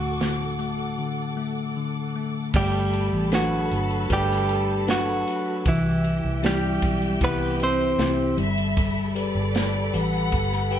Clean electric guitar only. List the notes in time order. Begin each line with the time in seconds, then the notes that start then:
Already playing: F#4
2.56 G3 G4
3.34 F#3 F#4
4.12 G3 G4
4.90 F#3 F#4
5.68 E3 E4
6.46 G3 G4
7.24 B3 B4
7.63 C4 C5